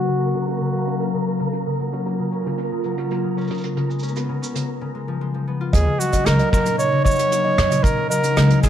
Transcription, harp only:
Already playing: F#3 A#3 C#4
0.08 C#3
0.21 C#4
0.34 C#3
0.61 C#3
0.74 F#3
0.87 C#4
1.00 A#3
1.14 C#3
1.27 C#4
1.40 C#3
1.66 C#3
1.79 F#3
1.93 C#4
2.06 A#3
2.19 C#3
2.32 C#4
2.45 C#3
2.72 C#3
2.85 F#3
2.98 C#4
3.11 A#3
3.24 C#3
3.37 C#4
3.50 C#3
3.76 C#3
3.89 G#3
4.03 C#4
4.16 B3
4.29 C#3
4.42 C#4
4.55 C#3
4.81 C#3
4.95 G#3
5.08 F3
5.21 G#3
5.34 F3
5.48 B3
5.61 F4
5.87 C#3
6.00 F#3
6.13 C#4
6.27 A#3
6.40 C#3
6.53 C#4
6.66 C#3
6.92 C#3
7.05 F#3
7.18 C#4
7.32 A#3
7.45 C#3
7.58 C#4
7.71 C#3
7.97 C#3
8.10 F#3
8.24 C#4
8.36 A#3
8.50 C#3
8.63 C#4

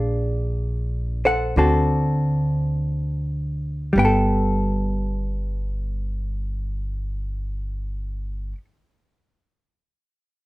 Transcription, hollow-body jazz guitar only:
Already playing: D4 G#4 D5 F5
1.25 A4 C5 F#5
1.57 D3 C4 F#4 A4
3.93 G3
3.98 B3 G5
4.05 A4

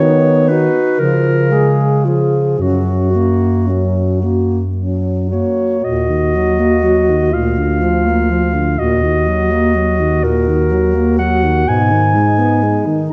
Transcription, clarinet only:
Already playing: C#5
0.49 B4
0.99 A#4
2.05 G#4
2.61 F#4
5.31 C#5
5.84 D#5
7.33 F5
8.79 D#5
10.23 A#4
11.19 F#5
11.68 G#5

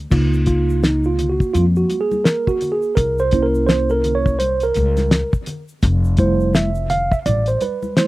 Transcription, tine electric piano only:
0.11 A#3 D#4 F4
0.47 F4
0.83 D#4
1.06 F4
1.30 F#4
1.54 F4
1.77 F#4
2.01 G#4
2.24 A#4
2.48 F#4
2.72 G#4
2.95 A#4
3.20 C5
3.32 A#3 C#4 E4
3.43 A#4
3.67 C5
3.90 A4 A#4
4.15 C#5
4.39 C5
4.63 A#4
6.18 G3 A3 E4 C5
6.55 E5
6.90 F5
7.12 E5
7.26 D5
7.48 C5
7.62 B4
7.97 G3 A3 E4 C5

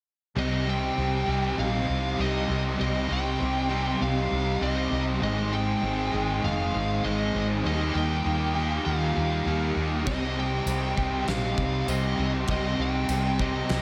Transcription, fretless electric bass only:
0.36 C2
0.97 C2
1.27 C2
1.58 A#1
1.89 C2
2.19 C2
2.49 C2
2.80 C2
3.10 C2
3.41 C2
4.01 C2
4.31 C2
4.61 C2
4.91 C2
5.21 G#1
5.83 G#1
6.13 G#1
6.44 F1
6.75 G#1
7.04 G#1
7.34 G#1
7.65 D#2
7.95 D#2
8.25 D#2
8.86 D#2
9.16 D#2
9.46 D#2
9.76 D#2
10.07 C2
10.66 C2
10.97 C2
11.27 A#1
11.58 C2
11.87 C2
12.18 C2
12.48 C2
12.78 C2
13.08 C2
13.69 C2

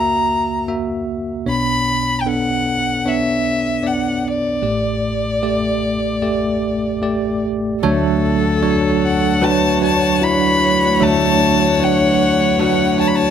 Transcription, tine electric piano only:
Already playing: C#2 C#3 A#3 F#4 E5
0.68 A#3 F#4 E5
1.46 B1 B2 B3 D4 C#5
2.26 B3 D4 A4
3.05 B3 D4 C#5
3.83 B3 D4 D5
4.62 A1 A2 A3 G4 D5
5.43 A3 G4 D5
6.22 A3 G4 D5
7.02 A3 G4 D5
7.83 D2 D3 F#3 D4 C#5
8.62 F#3 D4 C#5
9.42 F#3 D4 B4
9.82 F#3 D4 C#5
10.21 F#3 D4 E4
11.00 D2 D3 F#3 D4 E5
11.80 F#3 D4 C#5
12.59 F#3 D4 C#5
12.98 F#3 D4 C#5

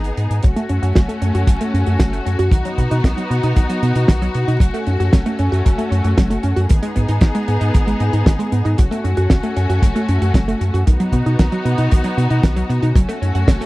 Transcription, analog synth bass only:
Already playing: G#1
0.17 G#2
0.30 G#2
0.44 F#1
0.70 F#2
0.83 F#2
0.96 F#1
1.22 F#2
1.35 F#2
1.47 F#1
1.74 F#2
1.87 F#2
2.00 F#1
2.26 F#2
2.39 F#2
2.51 B1
2.78 B2
2.91 B2
3.04 B1
3.30 B2
3.43 B2
3.57 B1
3.83 B2
3.96 B2
4.09 B1
4.35 B2
4.48 B2
4.60 F#1
4.87 F#2
5.00 F#2
5.13 F#1
5.39 F#2
5.52 F#2
5.66 F#1
5.91 F#2
6.04 F#2
6.18 F#1
6.44 F#2
6.57 F#2
6.71 G#1
6.97 G#2
7.09 G#2
7.21 G#1
7.48 G#2
7.61 G#2
7.75 G#1
8.00 G#2
8.13 G#2
8.26 G#1
8.52 G#2
8.65 G#2
8.79 F#1
9.04 F#2
9.18 F#2
9.31 F#1
9.57 F#2
9.70 F#2
9.82 F#1
10.09 F#2
10.22 F#2
10.34 F#1
10.61 F#2
10.74 F#2
10.87 B1
11.12 B2
11.26 B2
11.39 B1
11.65 B2
11.78 B2
11.92 B1
12.17 B2
12.31 B2
12.44 B1
12.70 B2
12.83 B2
12.95 F#1
13.22 F#2
13.35 F#2
13.48 F#1

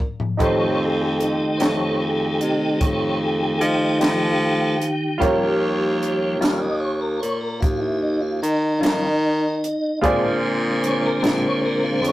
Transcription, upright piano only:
Already playing: D4 F4 G#4 A#4
0.37 D#4 G4 A4 C5
5.18 F4 G4 A#4 C#5
10.01 F4 G#4 C5 D5

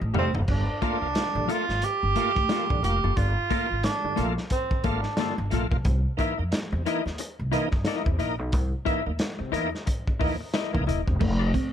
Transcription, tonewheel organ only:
0.14 G3 A3 D#4
0.35 A3 D#4
0.49 G2 D3
0.82 A3 A#3 F4
1.02 A#3 F4
1.15 A#3 F4
1.36 G2 D3
1.48 A3 A#3 F4
2.16 A3 A#3 F4
2.50 A#3 F4
2.70 G2 D3
2.83 A#3 F4
3.16 G2 D3
3.50 A3 A#3 F4
3.70 A#3 F4
3.83 A#3 F4
4.04 G2 D3
4.16 A3 A#3 F4
4.84 A3 A#3 F4
5.17 G2 D3
5.50 A3 A#3 F4
5.71 A#3 F4
5.84 C3
6.17 E3 A#3 D#4
6.38 A#3 D#4
6.51 A#3 D#4
6.72 C3
6.85 E3 A#3 D#4
7.52 E3 A#3 D#4
7.86 A#3 D#4
8.06 C3
8.19 A#3 D#4
8.53 C3
8.86 E3 A#3 D#4
9.06 A#3 D#4
9.19 A#3 D#4
9.40 C3
9.53 E3 A#3 D#4
10.20 E3 A#3 D#4
10.73 E3 A#3 D#4
11.07 C3

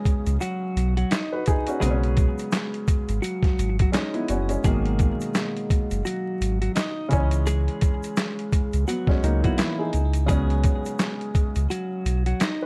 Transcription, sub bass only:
0.27 C#2
0.76 B1
1.82 B1
3.09 G#1
3.59 G#1
4.29 F#1
4.64 G#1
5.91 F#1
6.41 G#1
7.13 C#2
8.74 C#2
9.23 C#2
9.94 C#2
11.56 C#2
12.05 B1

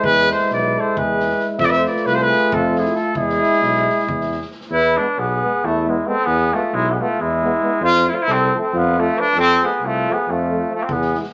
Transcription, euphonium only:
Already playing: G#3
1.58 A3
3.15 G#3
4.97 G#3
5.43 G#3
5.86 G#3
6.06 G#3
6.52 G#3
6.97 G#3
7.42 G#3
7.61 G#3
8.07 F3
8.53 F3
8.96 F3
9.15 F3
9.60 F3
10.07 F3
10.50 F3
10.67 F3
11.15 E3

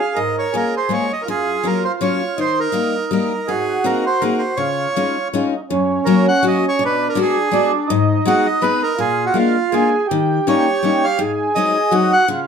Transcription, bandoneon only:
Already playing: F5
0.16 D#5
0.39 C#5
0.56 A#4
0.77 C5
0.93 C#5
1.13 D#5
1.22 A#4
1.30 G#4
1.67 A#4
1.84 C5
2.02 C#5
2.40 C5
2.60 A#4
3.12 A#4
3.48 G#4
3.85 A#4
4.06 C5
4.21 A#4
4.39 C5
4.56 C#5
6.05 A#4
6.28 F#5
6.47 D#5
6.68 C#5
6.85 B4
7.09 A#4
7.22 G#4
8.27 F#4
8.46 D#5
8.62 B4
8.83 A#4
9.00 G#4
9.26 F#4
9.38 F4
10.48 C#5
11.04 F5
11.55 D#5
12.13 F#5

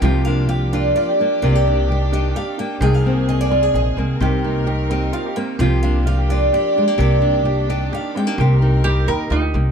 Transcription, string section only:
0.03 F3 A#3 G4
1.42 D#3 D4
2.82 C3 A#3 G#4
4.18 D#3 C4 A#4
5.57 F3 A#3 G4
6.97 D#3 D4
8.36 C4 A#4

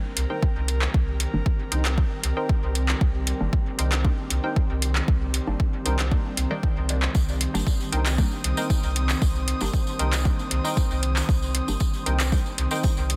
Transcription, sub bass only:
0.17 C2
0.56 C2
0.94 C2
1.33 G1
1.72 C2
2.24 C2
2.63 C2
3.01 C2
3.40 G1
3.79 C2
4.30 C2
4.70 C2
5.08 C2
5.47 G1
5.86 C2
6.37 C2
6.76 C2
7.15 C2
7.54 G1
7.92 C2
8.44 C2
8.83 C2
9.22 C2
9.61 G1
9.99 C2
10.51 C2
10.90 C2
11.29 C2
11.68 G1
12.06 C2
12.58 C2
12.97 C2

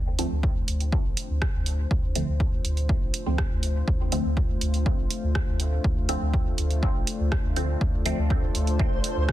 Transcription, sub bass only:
Already playing: D2
0.31 D2
0.68 D2
1.05 A1
1.30 D2
1.54 D2
1.91 D2
2.28 D2
2.65 D2
3.02 A1
3.26 D2
3.51 D2
3.88 D2
4.25 D2
4.61 D2
4.98 A1
5.23 D2
5.48 D2
5.84 D2
6.21 D2
6.58 D2
6.95 A1
7.20 D2
7.44 D2
7.81 D2
8.18 D2
8.55 D2
8.92 A1
9.16 D2

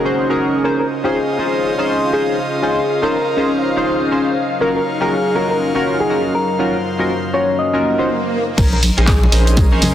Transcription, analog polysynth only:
0.05 C#4 D#4 F#4 G#4 C5
0.29 C#4 D#4 F#4 G#4 A#4
0.64 C#4 D#4 F4 G#4 C5
1.04 C#4 D#4 F4 G#4 C5
1.38 C#4 D#4 F4 G#4 C5
1.78 C#4 D#4 F4 G#4 C5
2.13 C#4 D#4 F4 G#4 C5
2.62 C#4 D#4 F4 G#4 C5
3.02 C#4 D#4 F4 G#4 C5
3.37 C#4 D#4 F4 G#4 C5
3.77 C#4 D#4 F4 G#4 C5
4.11 C#4 D#4 F4 G#4 C5
4.61 C#4 D#4 F4 F#4 A#4
5.00 C#4 D#4 F4 F#4 A#4
5.35 C#4 D#4 F4 F#4 A#4
5.75 C#4 D#4 F4 F#4 A#4
6.09 C#4 D#4 F4 F#4 A#4
6.59 C#4 D#4 F4 F#4 A#4
6.99 C#4 D#4 F4 F#4 A#4
7.33 C#4 D#4 F4 F#4 A#4
7.73 C#4 D#4 F4 F#4 A#4
7.98 C#4 D#4 F4 F#4 C5
8.57 C#4 D#4 G#4 A#4 C5
8.97 C#4 D#4 G#4 A#4 C5
9.32 C#4 D#4 G#4 A#4 C5
9.72 C#4 D#4 G#4 A#4 C5

